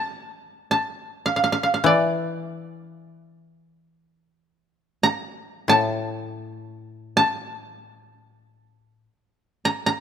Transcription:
0.00 0.71 A5 medium
0.71 1.97 A5 medium
1.26 1.36 F5 medium
1.36 1.43 F5 soft
1.44 1.52 F5 medium
1.52 1.63 F5 medium
1.63 1.74 F5 medium
1.74 1.92 F5 soft
1.84 5.22 E3 medium
1.84 2.24 D5 medium
2.24 2.48 D#5 medium
2.48 3.97 E5 medium
5.03 5.75 A#5 medium
5.68 9.06 A2 medium
5.68 7.14 A5 medium
7.17 9.63 A5 medium
9.65 9.86 A#5 medium
9.86 10.00 A#5 medium

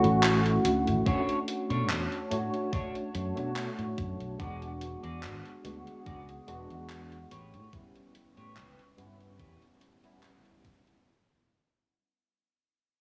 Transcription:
0.00 0.57 A1 loud
0.00 1.06 A3 loud
0.00 1.06 C#4 medium
0.00 1.08 E4 medium
0.00 1.07 F#4 loud
0.00 1.03 F#5 medium
0.00 muted clean electric guitar stroke soft
0.04 closed hi-hat soft
0.23 clap loud
0.23 closed hi-hat medium
0.46 closed hi-hat soft
0.64 0.88 D2 medium
0.64 muted clean electric guitar stroke soft
0.64 closed hi-hat medium
0.87 1.02 A1 medium
0.87 closed hi-hat soft
1.06 1.20 A3 medium
1.06 1.20 C#4 medium
1.06 1.38 D4 loud
1.06 1.20 D4 medium
1.06 1.20 F#4 medium
1.06 1.38 A4 medium
1.06 4.36 C#5 medium
1.06 1.38 C#5 loud
1.06 4.37 A5 medium
1.06 kick loud
1.06 closed hi-hat medium
1.29 closed hi-hat soft
1.48 closed hi-hat medium
1.70 1.90 B2 medium
1.70 2.01 D4 medium
1.70 2.01 A4 medium
1.70 2.01 C#5 medium
1.70 closed hi-hat soft
1.90 2.06 E2 medium
1.90 clap loud
1.90 closed hi-hat medium
2.12 closed hi-hat soft
2.30 2.48 A2 medium
2.30 3.32 A3 medium
2.30 3.33 D4 medium
2.30 3.33 F#4 loud
2.30 3.32 C#5 medium
2.30 closed hi-hat medium
2.54 closed hi-hat soft
2.73 2.95 D4 medium
2.73 2.95 A4 medium
2.73 2.95 C#5 medium
2.73 kick loud
2.73 closed hi-hat medium
2.95 closed hi-hat soft
3.14 3.32 F#2 loud
3.14 muted clean electric guitar stroke medium
3.14 closed hi-hat medium
3.35 3.68 B2 medium
3.35 4.34 A3 medium
3.35 4.35 D4 medium
3.35 4.36 F#4 medium
3.35 4.35 C#5 medium
3.35 muted clean electric guitar stroke soft
3.35 closed hi-hat soft
3.56 clap loud
3.56 closed hi-hat medium
3.79 3.93 A2 medium
3.79 closed hi-hat soft
3.98 4.15 F#2 medium
3.98 muted clean electric guitar stroke soft
3.98 kick medium
3.98 closed hi-hat medium
4.20 4.35 B1 medium
4.20 closed hi-hat soft
4.38 4.95 E1 medium
4.38 5.59 G#3 medium
4.38 5.60 B3 medium
4.38 5.60 D4 medium
4.38 4.72 F#4 loud
4.38 5.61 F#4 loud
4.38 7.28 G#4 medium
4.38 4.72 G#4 medium
4.38 4.72 D5 loud
4.38 7.28 F#5 medium
4.38 kick loud
4.38 closed hi-hat medium
4.62 closed hi-hat soft
4.81 closed hi-hat medium
5.03 5.24 E2 medium
5.03 5.34 F#4 medium
5.03 5.34 G#4 medium
5.03 5.34 D5 medium
5.03 closed hi-hat soft
5.23 5.40 G#1 medium
5.23 clap loud
5.23 closed hi-hat medium
5.45 closed hi-hat soft
5.64 5.81 D2 medium
5.64 6.43 G#3 medium
5.64 6.43 B3 medium
5.64 6.44 D4 medium
5.64 6.44 F#4 medium
5.64 muted clean electric guitar stroke soft
5.64 closed hi-hat medium
5.87 closed hi-hat soft
6.06 6.38 C#2 medium
6.06 6.29 F#4 medium
6.06 6.29 G#4 medium
6.06 6.29 D5 medium
6.06 kick loud
6.06 closed hi-hat medium
6.29 closed hi-hat soft
6.47 6.65 E1 medium
6.47 6.69 G#3 medium
6.47 6.70 B3 medium
6.47 6.70 D4 medium
6.47 6.70 F#4 loud
6.47 muted clean electric guitar stroke medium
6.47 closed hi-hat medium
6.70 7.24 E2 medium
6.70 muted clean electric guitar stroke soft
6.70 closed hi-hat soft
6.90 clap loud
6.90 closed hi-hat medium
7.12 closed hi-hat soft
7.31 7.55 A1 medium
7.31 8.15 G4 medium
7.31 11.03 B4 medium
7.31 8.15 B4 medium
7.31 8.15 C#5 loud
7.31 8.96 G5 medium
7.31 11.03 C#6 medium
7.31 closed hi-hat medium
7.54 7.68 A2 medium
7.54 closed hi-hat soft
7.72 7.86 G3 medium
7.72 7.87 B3 medium
7.72 7.87 C#4 medium
7.72 7.87 E4 medium
7.72 kick loud
7.72 closed hi-hat medium
7.95 closed hi-hat soft
8.15 closed hi-hat medium
8.37 8.58 A2 medium
8.37 8.67 G4 medium
8.37 8.68 B4 medium
8.37 8.68 C#5 medium
8.37 closed hi-hat soft
8.56 8.73 C#2 medium
8.56 clap loud
8.56 closed hi-hat medium
8.79 closed hi-hat soft
8.97 9.40 G2 medium
8.97 9.99 G3 medium
8.97 9.99 B3 medium
8.97 10.00 C#4 medium
8.97 10.00 E4 loud
8.97 11.04 A5 medium
8.97 muted clean electric guitar stroke soft
8.97 closed hi-hat medium
9.21 closed hi-hat soft
9.39 9.56 E2 medium
9.39 9.62 G4 medium
9.39 9.62 B4 medium
9.39 9.62 C#5 medium
9.39 kick loud
9.39 closed hi-hat medium
9.62 closed hi-hat soft
9.81 muted clean electric guitar stroke medium
9.81 closed hi-hat medium
10.03 11.01 G3 medium
10.03 11.02 B3 medium
10.03 11.02 C#4 medium
10.03 11.03 E4 medium
10.03 muted clean electric guitar stroke soft
10.03 closed hi-hat soft
10.23 clap loud
10.23 closed hi-hat medium
10.46 closed hi-hat soft
10.64 muted clean electric guitar stroke soft
10.64 kick medium
10.64 closed hi-hat medium
10.87 closed hi-hat soft

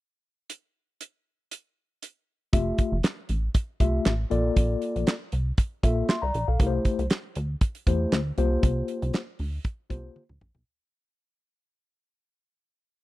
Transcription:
0.50 closed hi-hat medium
1.01 closed hi-hat medium
1.51 closed hi-hat medium
2.02 closed hi-hat medium
2.53 2.73 F1 loud
2.53 2.95 A3 medium
2.53 2.96 F4 medium
2.53 2.96 G4 medium
2.53 2.96 E5 medium
2.53 kick loud
2.53 closed hi-hat loud
2.78 kick medium
2.78 closed hi-hat medium
2.92 3.01 F1 loud
3.03 snare loud
3.03 clap medium
3.03 closed hi-hat medium
3.29 3.49 A1 medium
3.29 closed hi-hat medium
3.54 kick loud
3.54 closed hi-hat medium
3.80 4.00 C2 medium
3.80 4.12 A3 medium
3.80 4.12 F4 medium
3.80 4.12 G4 medium
3.80 4.12 E5 medium
3.80 kick medium
3.80 closed hi-hat medium
4.05 4.25 A1 medium
4.05 snare loud
4.05 clap medium
4.05 closed hi-hat medium
4.30 4.51 A#1 loud
4.30 5.12 A#3 medium
4.30 5.13 F4 medium
4.30 5.13 A4 medium
4.30 5.13 D5 medium
4.30 closed hi-hat medium
4.56 4.76 A#1 medium
4.56 kick loud
4.56 closed hi-hat loud
4.82 closed hi-hat medium
4.96 5.05 A#1 loud
4.96 closed hi-hat soft
5.07 snare loud
5.07 clap medium
5.07 closed hi-hat medium
5.32 5.52 C2 medium
5.32 closed hi-hat medium
5.58 kick loud
5.58 closed hi-hat medium
5.83 6.03 A#1 medium
5.83 6.15 A#3 medium
5.83 6.15 F4 medium
5.83 6.09 A4 medium
5.83 6.08 E5 medium
5.83 kick medium
5.83 closed hi-hat medium
6.09 6.22 E5 medium
6.09 6.22 C6 medium
6.09 snare loud
6.09 clap medium
6.09 closed hi-hat medium
6.22 6.32 C2 medium
6.22 6.47 D5 medium
6.22 6.46 A#5 medium
6.34 6.45 A#1 medium
6.34 closed hi-hat medium
6.48 6.57 B1 medium
6.48 6.72 A4 medium
6.48 6.72 F5 medium
6.60 6.79 C2 loud
6.60 7.02 A3 medium
6.60 7.02 E4 medium
6.60 7.03 G4 medium
6.60 6.67 A#4 medium
6.60 kick loud
6.60 closed hi-hat loud
6.67 7.06 C5 medium
6.85 kick medium
6.85 closed hi-hat medium
6.99 7.08 C2 loud
6.99 closed hi-hat medium
7.10 snare loud
7.10 clap medium
7.10 closed hi-hat medium
7.35 7.56 D2 medium
7.35 closed hi-hat medium
7.61 kick loud
7.61 closed hi-hat medium
7.75 closed hi-hat medium
7.87 8.07 E2 medium
7.87 8.19 A3 medium
7.87 8.19 E4 medium
7.87 8.19 G4 medium
7.87 8.19 C5 medium
7.87 kick medium
7.87 closed hi-hat medium
8.12 8.32 D2 medium
8.12 snare loud
8.12 clap medium
8.12 closed hi-hat medium
8.38 8.58 C2 loud
8.38 9.19 A#3 medium
8.38 9.20 F4 medium
8.38 9.20 G4 medium
8.38 9.20 C5 loud
8.38 closed hi-hat medium
8.63 8.83 C2 medium
8.63 kick loud
8.63 closed hi-hat loud
8.88 closed hi-hat medium
9.02 9.12 C2 loud
9.02 closed hi-hat medium
9.13 snare loud
9.13 clap medium
9.13 closed hi-hat medium
9.39 9.59 D2 medium
9.39 open hi-hat medium
9.64 kick loud
9.64 closed hi-hat medium
9.90 10.10 C2 medium
9.90 10.22 A#3 medium
9.90 10.22 F4 medium
9.90 10.22 G4 medium
9.90 10.22 C5 medium
9.90 kick medium
9.90 closed hi-hat medium
10.16 high tom medium
10.29 10.39 D2 medium
10.29 mid tom medium
10.41 10.52 A#1 medium
10.41 mid tom medium
10.55 10.64 B1 medium
10.55 floor tom medium

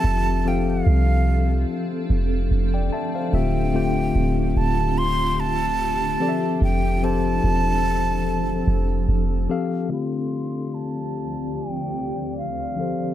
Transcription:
0.00 0.83 F1 loud
0.00 0.30 F3 medium
0.00 3.29 F3 medium
0.00 0.30 C4 medium
0.00 9.86 C4 medium
0.00 9.86 D4 medium
0.00 0.31 G4 medium
0.00 0.31 A4 medium
0.00 3.29 A4 medium
0.00 0.31 E5 medium
0.00 0.49 A5 loud
0.45 1.59 F3 medium
0.45 1.59 C4 medium
0.45 1.60 G4 medium
0.45 1.60 A4 medium
0.45 1.60 F5 medium
0.45 0.71 G5 medium
0.70 1.92 F5 medium
0.86 1.65 C2 loud
2.10 2.49 F1 loud
2.51 2.90 F1 loud
2.74 2.92 D5 medium
2.74 2.91 G5 medium
2.93 3.14 E5 medium
2.93 3.13 A5 medium
3.15 3.54 C5 medium
3.15 3.53 F5 medium
3.32 4.12 D1 loud
3.32 6.18 D3 medium
3.32 3.62 D3 medium
3.32 3.62 A3 medium
3.32 3.62 C4 medium
3.32 6.18 F4 medium
3.32 3.63 F4 medium
3.32 6.17 G4 medium
3.32 3.63 G4 medium
3.32 3.63 E5 medium
3.32 4.59 G5 loud
3.74 4.88 D3 medium
3.74 4.88 A3 medium
3.74 4.88 C4 medium
3.74 4.88 F4 medium
3.74 4.89 G4 medium
3.74 4.89 G5 medium
4.15 4.54 D1 loud
4.56 6.17 D1 loud
4.56 4.99 A5 loud
4.98 5.41 C6 loud
5.40 6.62 A5 loud
6.20 6.87 F3 medium
6.20 9.87 F3 medium
6.20 6.87 C4 medium
6.20 6.88 G4 medium
6.20 9.87 A4 medium
6.20 6.88 A4 medium
6.20 6.28 D5 medium
6.29 6.92 E5 medium
6.61 7.40 F1 loud
6.61 7.05 G5 medium
7.02 8.16 F3 medium
7.02 8.17 C4 medium
7.02 8.17 G4 medium
7.02 8.17 A4 medium
7.02 8.18 C5 medium
7.02 9.50 A5 loud
7.44 8.63 E1 loud
8.67 9.06 F1 loud
9.08 9.48 F1 loud
9.49 9.78 F3 medium
9.49 9.79 C4 medium
9.49 9.79 G4 medium
9.49 9.79 A4 medium
9.49 9.80 F5 medium
9.89 12.75 D2 medium
9.89 12.73 D3 medium
9.89 12.75 D3 medium
9.89 13.14 F3 medium
9.89 12.74 A3 medium
9.89 12.74 C4 medium
9.89 12.75 C4 medium
9.89 12.75 F4 medium
9.89 12.75 G4 medium
9.89 13.14 D5 medium
9.89 10.76 C6 medium
10.74 11.58 A5 loud
11.56 12.37 G5 medium
12.38 13.14 F5 medium
12.76 13.14 F3 medium
12.76 13.14 C4 medium
12.76 13.14 G4 medium
12.76 13.14 A4 medium
12.81 13.14 C5 medium

